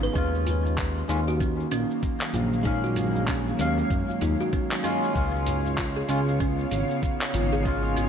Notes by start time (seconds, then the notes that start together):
Already playing: C#3 B3 D#4 C#5 F5
0.03 B4, cabasa
0.13 D#2 D#3 G#3 C#4, kick, cabasa
0.17 F4
0.35 cabasa
0.47 A#3, closed hi-hat, djembe tone, djembe bass, cabasa
0.65 djembe tone, cabasa
0.78 kick, clap, cabasa
0.97 cabasa
1.07 D#2 G#3 C#4 D#4 F4 F5, closed hi-hat, cabasa
1.27 F#4, djembe slap, cabasa
1.40 C#4, kick, cabasa
1.54 F#3
1.60 cabasa
1.71 A#1 C#4, closed hi-hat, djembe tone, cabasa
1.91 cabasa
2.03 kick, cabasa
2.21 clap, cabasa
2.33 A#1, closed hi-hat, djembe bass, cabasa
2.41 C#5
2.53 cabasa
2.63 G#3 C#4 D#4, kick, cabasa
2.67 F5
2.84 F#4, cabasa
2.96 C#4, closed hi-hat, djembe tone, djembe bass, cabasa
3.16 djembe tone, cabasa
3.28 C#4, kick, clap, cabasa
3.47 cabasa
3.57 D#2 G#3 C#4 F5, closed hi-hat, cabasa
3.78 djembe slap, cabasa
3.90 F#2, kick, cabasa
4.09 djembe slap, djembe tone, cabasa
4.21 D#2 D#4, closed hi-hat, djembe bass, cabasa
4.40 F#4, djembe slap, cabasa
4.53 C#4, kick, cabasa
4.71 clap, cabasa
4.83 G#3 C#4 F4, closed hi-hat, djembe slap, djembe tone, cabasa
5.04 cabasa
5.13 C#2 C#3 G#3 C#4, kick, cabasa
5.17 F4
5.35 cabasa
5.46 closed hi-hat, djembe tone, djembe bass, cabasa
5.59 B3
5.66 djembe tone, cabasa
5.78 F4, kick, clap, cabasa
5.96 G#4, cabasa
6.08 C#2 G#3 C#4 F4, closed hi-hat, cabasa
6.28 D#4, djembe slap, cabasa
6.40 C#4, kick, cabasa
6.59 cabasa
6.71 G#1, closed hi-hat, djembe tone, cabasa
6.91 cabasa
7.03 kick, cabasa
7.21 clap, cabasa
7.34 G#1 F4, closed hi-hat, djembe bass, cabasa
7.53 G#4, cabasa
7.63 G#3 C#4, kick, cabasa
7.67 F4
7.85 cabasa
7.96 C#4, closed hi-hat, djembe tone, djembe bass, cabasa